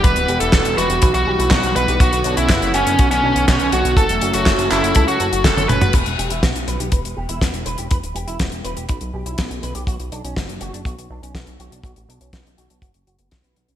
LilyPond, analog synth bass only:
\new Staff \with { instrumentName = "Analog synth bass" } { \clef bass \time 4/4 \key e \dorian \tempo 4 = 122 e,,16 d,,16 e,,16 e,,16 e,,16 e,,16 e,,16 e,,16 b,,16 b,,16 b,,16 b,,16 b,,16 b,,16 b,,16 b,,16 | b,,16 b,,16 b,,16 b,,16 fis,,16 fis,,16 fis,,16 fis,,16 b,,16 b,,16 b,,16 b,,16 b,,16 b,,16 b,,16 b,,16 | fis,,16 e,,16 fis,,16 fis,,16 fis,,16 fis,,16 fis,,16 fis,,16 cis,16 cis,16 fis,,16 fis,,16 fis,,16 fis,,16 fis,,16 fis,,16 | e,,16 e,,16 e,,16 e,,16 b,,16 b,,16 b,,16 b,,16 e,,16 e,,16 e,,16 e,,16 e,,16 e,,16 e,,16 e,,16 |
e,,16 d,,16 e,,16 e,,16 e,,16 e,,16 e,,16 e,,16 b,,16 b,,16 b,,16 b,,16 b,,16 b,,16 b,,16 b,,16 | b,,16 b,,16 b,,16 b,,16 fis,,16 fis,,16 fis,,16 fis,,16 b,,16 b,,16 b,,16 b,,16 b,,16 b,,16 b,,16 b,,16 | b,,16 a,,16 b,,16 b,,16 b,,16 b,,16 b,,16 b,,16 fis,,16 fis,,16 fis,,16 fis,,16 b,,16 b,,16 b,,16 b,,16 | }